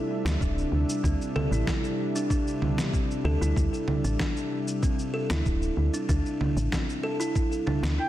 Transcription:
Already playing: C3 G3 D4 E4 E5
0.25 D2 D4, snare, shaker
0.41 D1 D4, kick, shaker
0.58 shaker
0.72 D2
0.89 shaker
1.04 D2 C4, kick, shaker
1.21 shaker
1.36 A4, low conga
1.51 A1 E4, shaker
1.67 kick, snare, shaker
1.84 shaker
2.16 D4, shaker
2.30 D4, kick, shaker
2.47 shaker
2.62 low conga
2.78 snare, shaker
2.93 C4, kick, shaker
3.11 shaker
3.25 D2 A4
3.41 D2 E4, shaker
3.56 D2, kick, shaker
3.74 shaker
3.88 low conga
4.04 A1 D4, shaker
4.19 D4, kick, snare, shaker
4.37 shaker
4.68 shaker
4.83 C4, kick, shaker
4.99 shaker
5.14 A4
5.30 D2 E4, snare, shaker
5.46 D1, kick, shaker
5.62 shaker
5.77 D2
5.94 D4, shaker
6.09 D2 D4, kick, shaker
6.26 shaker
6.41 low conga
6.57 A1, shaker
6.72 C4, kick, snare, shaker
6.89 shaker
7.03 A4
7.20 E4, shaker
7.35 kick, shaker
7.52 shaker
7.67 D4, low conga
7.83 D2 D4, snare, shaker
7.98 E4 G5

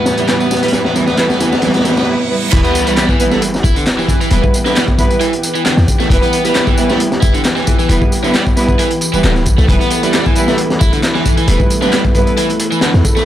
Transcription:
Already playing: E2 A2 B3, riser
0.06 snare, closed hi-hat, tambourine
0.18 G3 B3 E4 B4, closed hi-hat, tambourine
0.28 E3 G3 B3 E4 B4, snare, clap, closed hi-hat, tambourine
0.40 B3, tambourine
0.51 snare, closed hi-hat, tambourine
0.57 closed hi-hat
0.63 G3 B3 E4 B4, closed hi-hat, tambourine
0.68 closed hi-hat
0.73 E3 G3 B3 E4 B4, snare, closed hi-hat, tambourine
0.85 B3, snare
0.96 E3 G3 B3 E4 B4, snare, closed hi-hat, tambourine
1.07 B3, snare, tambourine
1.17 E3 G3 B3 E4 B4, snare, clap, closed hi-hat, tambourine
1.30 B3, snare, tambourine
1.40 E3 G3 B3 E4 B4, snare, closed hi-hat, tambourine
1.52 B3, snare, tambourine
1.62 E3 G3 B3 E4 B4, snare, closed hi-hat, tambourine, reverse cymbal
1.68 snare
1.74 B3, snare, closed hi-hat
1.80 snare
1.85 E3 G3 B3 E4 B4, snare, closed hi-hat, tambourine
1.92 snare
1.97 B3, snare, tambourine
2.03 snare
2.08 G3 B3 E4 B4
2.30 G3 B3 E4 B4
2.52 E1 E3 G3 B3 E4 G4 B4, kick, closed hi-hat, crash, tambourine, sub drop
2.64 B3, closed hi-hat, tambourine
2.75 closed hi-hat, tambourine
2.87 G3 B3 E4 B4, closed hi-hat, tambourine
2.97 snare, clap, closed hi-hat, tambourine
3.09 E3, kick, tambourine
3.20 G3 B3 E4 B4, closed hi-hat, tambourine
3.31 A3, snare, tambourine
3.42 closed hi-hat, tambourine
3.54 snare, tambourine
3.64 G1 E4, kick, closed hi-hat, tambourine
3.76 D3, closed hi-hat, tambourine
3.87 snare, clap, closed hi-hat, tambourine
3.99 E3, snare, tambourine
4.08 kick, closed hi-hat, tambourine
4.21 E3, closed hi-hat, tambourine
4.31 E1 E3 G3 B3 E4 B4, closed hi-hat, tambourine
4.43 kick, tambourine
4.54 closed hi-hat, tambourine
4.65 D3 G3 B3 E4 B4, snare, tambourine
4.76 G3, snare, clap, closed hi-hat, tambourine
4.88 kick, tambourine
4.99 G3 B3 E4 B4, kick, closed hi-hat, tambourine
5.11 closed hi-hat, tambourine
5.21 E3, closed hi-hat, tambourine
5.33 closed hi-hat, tambourine
5.43 closed hi-hat, tambourine
5.55 E3, tambourine
5.66 D3, snare, clap, closed hi-hat, tambourine
5.77 E2, snare, tambourine
5.88 kick, closed hi-hat, tambourine
6.00 A3, snare, tambourine
6.10 E1 E3 G3 B3 E4 B4, kick, closed hi-hat, tambourine
6.22 B3, closed hi-hat, tambourine
6.33 closed hi-hat, tambourine
6.45 G3 B3 E4 B4, closed hi-hat, tambourine
6.55 snare, clap, closed hi-hat, tambourine
6.67 E3, kick, tambourine
6.78 G3 B3 E4 B4, closed hi-hat, tambourine
6.89 A3, snare, tambourine
7.00 closed hi-hat, tambourine
7.12 snare, tambourine
7.22 G1 E4, kick, closed hi-hat, tambourine
7.34 D3, closed hi-hat, tambourine
7.45 snare, clap, closed hi-hat, tambourine
7.56 E3, snare, tambourine
7.67 kick, closed hi-hat, tambourine
7.79 E3, closed hi-hat, tambourine
7.89 E1 E3 G3 B3 E4 B4, closed hi-hat, tambourine
8.02 kick, tambourine
8.12 closed hi-hat, tambourine
8.23 D3 G3 B3 E4 B4, snare, tambourine
8.34 G3, snare, clap, closed hi-hat, tambourine
8.46 kick, tambourine
8.57 G3 B3 E4 B4, snare, closed hi-hat, tambourine
8.69 kick, tambourine
8.79 E3, closed hi-hat, tambourine
8.91 closed hi-hat, tambourine
9.01 closed hi-hat, tambourine
9.13 D1 E3 G3 B3 E4 B4, tambourine
9.24 D1 D3, snare, clap, closed hi-hat, tambourine
9.36 snare, tambourine
9.46 B1, kick, closed hi-hat, tambourine
9.58 B1 A3, snare, tambourine
9.68 E1 E3 G3 A3 B3 E4 B4, kick, closed hi-hat, tambourine
9.81 B3, closed hi-hat, tambourine
9.91 closed hi-hat, tambourine
10.03 G3 B3 E4 B4, closed hi-hat, tambourine
10.13 snare, clap, closed hi-hat, tambourine
10.26 E3, kick, tambourine
10.35 G3 B3 E4 B4, closed hi-hat, tambourine
10.48 A3, snare, tambourine
10.58 closed hi-hat, tambourine
10.70 snare, tambourine
10.81 G1 E4, kick, closed hi-hat, tambourine
10.93 D3, closed hi-hat, tambourine
11.03 snare, clap, closed hi-hat, tambourine
11.15 E3, snare, tambourine
11.26 kick, closed hi-hat, tambourine
11.37 E3, closed hi-hat, tambourine
11.48 E1 E3 G3 B3 E4 B4, closed hi-hat, tambourine
11.60 kick, tambourine
11.70 closed hi-hat, tambourine
11.81 D3 G3 B3 E4 B4, snare, tambourine
11.93 G3, snare, clap, closed hi-hat, tambourine
12.05 kick, tambourine
12.15 G3 B3 E4 B4, kick, closed hi-hat, tambourine
12.27 closed hi-hat, tambourine
12.37 E3, closed hi-hat, tambourine
12.50 closed hi-hat, tambourine
12.60 closed hi-hat, tambourine
12.72 E3, tambourine
12.81 D3, snare, clap, closed hi-hat, tambourine
12.94 E2, snare, tambourine
13.05 kick, closed hi-hat, tambourine
13.16 A3, snare, tambourine

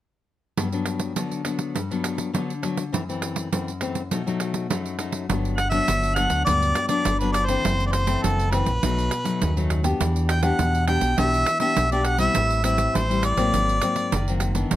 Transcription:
0.57 G2 F#3 B3 D4, pandeiro
0.72 F#3 B3 D4, pandeiro
0.86 pandeiro
0.99 pandeiro
1.16 D3 F#3 B3 D4, pandeiro
1.32 pandeiro
1.45 F#3 B3 D4, pandeiro
1.59 pandeiro
1.75 G2, pandeiro
1.91 F#3 B3 D4, pandeiro
2.04 pandeiro
2.18 pandeiro
2.33 D3 F#3 B3 D4, pandeiro
2.50 pandeiro
2.63 F#3 B3 D4, pandeiro
2.77 pandeiro
2.92 F#2 E3 A3 C4, pandeiro
3.09 E3 A3 C4, pandeiro
3.22 pandeiro
3.36 pandeiro
3.52 F#2 E3 A3 C4, pandeiro
3.68 pandeiro
3.81 E3 A3 C4, pandeiro
3.95 pandeiro
4.11 B2 F#3 A3 D#4, pandeiro
4.27 F#3 A3 D#4, pandeiro
4.40 pandeiro
4.54 pandeiro
4.70 F#2 F#3 A3 D#4, pandeiro
4.86 pandeiro
4.98 F#3 A3 D#4, pandeiro
5.12 pandeiro
5.29 G1 G2 F#3 B3 D4, pandeiro
5.45 pandeiro
5.57 F#5, pandeiro
5.70 F#3 B3 D4 E5, pandeiro
5.88 G1 D3, pandeiro
6.04 pandeiro
6.15 F#3 B3 D4 F#5, pandeiro
6.30 D2, pandeiro
6.45 D2 G2 F#3 B3 D4 D5, pandeiro
6.62 pandeiro
6.75 pandeiro
6.88 F#3 B3 D4 D5, pandeiro
7.05 G1 D3, pandeiro
7.19 F#3 B3 D4 B4, pandeiro
7.32 D5, pandeiro
7.46 E3 A3 C4 C5, pandeiro
7.64 F#1 F#2, pandeiro
7.80 pandeiro
7.86 D5
7.92 C5, pandeiro
8.07 E3 A3 C4, pandeiro
8.23 F#1 F#2 A4, pandeiro
8.39 pandeiro
8.51 E3 A3 C4 B4, pandeiro
8.66 A#1, pandeiro
8.83 B1 B2 F#3 A3 D#4, pandeiro
8.99 pandeiro
9.11 pandeiro
9.24 F#3 A3 D#4, pandeiro
9.41 D#2 F#2, pandeiro
9.57 F#3 A3 D#4, pandeiro
9.70 pandeiro
9.83 B3 D4 G4, pandeiro
10.00 E2 E3, pandeiro
10.16 pandeiro
10.28 G5, pandeiro
10.43 B3 D4 G4 F#5, pandeiro
10.59 E2 B2, pandeiro
10.75 pandeiro
10.87 B3 D4 G4 G5, pandeiro
11.01 B1, pandeiro
11.18 B1 E3 B3 D4 G4 E5, pandeiro
11.34 pandeiro
11.46 pandeiro
11.60 B3 D4 G4 E5, pandeiro
11.77 B1 B2, pandeiro
11.92 B3 D4 G4 D5, pandeiro
12.05 F#5, pandeiro
12.18 G3 C4 E4 E5, pandeiro
12.35 A1 A2, pandeiro
12.51 pandeiro
12.63 G3 C4 E4 E5, pandeiro
12.78 pandeiro
12.94 A1 E3 C5, pandeiro
13.10 G3 C4 E4, pandeiro
13.23 D5, pandeiro
13.37 A1 F#3 A#3 C4, pandeiro
13.53 G#1 G#2, pandeiro
13.69 pandeiro
13.82 F#3 A#3 C4, pandeiro
13.96 pandeiro
14.12 F#1 D#3, pandeiro
14.28 F#3 A#3 C4, pandeiro
14.40 pandeiro
14.55 E3 B3 D4, pandeiro
14.71 G1 G2, pandeiro

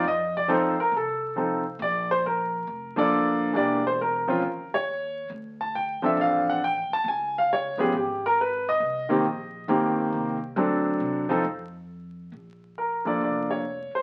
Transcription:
0.04 F2 D#5
0.37 D5
0.48 F3 C4 D#4 A4
0.53 C5
0.76 A#4, muted upright bass stroke
0.92 C2
0.97 A4
1.36 F3 C4 D#4 A4
1.79 A#1 D5
2.11 C5
2.26 A#4
2.67 F1
2.96 F3 A#3 D4 A4 D5
3.53 E1 E3 A#3 D4 G4 D5
3.87 C5
4.01 A#4
4.27 F3 C4 C#4 F4
4.42 D#2
4.74 C#5
5.30 D2
5.61 A5
5.75 G5
6.02 F3 C4 D4 A4 E5, muted upright bass stroke
6.17 A1 F5
6.49 F#5
6.64 G5
6.90 A5, muted upright bass stroke
7.04 C#2
7.08 G#5
7.38 F5
7.53 C#5
7.77 G#2 F3 B3 C#4 G4 G#4
7.92 G#1
7.97 G4
8.26 A#4
8.41 B4
8.69 D#5
8.80 C2
9.09 D#3 A#3 C4 G4
9.25 A#1
9.68 G1 D#3 A#3 C4 G4
10.13 C2
10.56 D2 F#3 C4 D4 A4
11.00 C3
11.29 F3 C4 D#4 A4
11.44 F2
12.32 A#1
12.78 A#4
13.05 F3 A#3 D4 A4 D5
13.21 F1 D5
13.50 C#5
13.94 C5, muted upright bass stroke

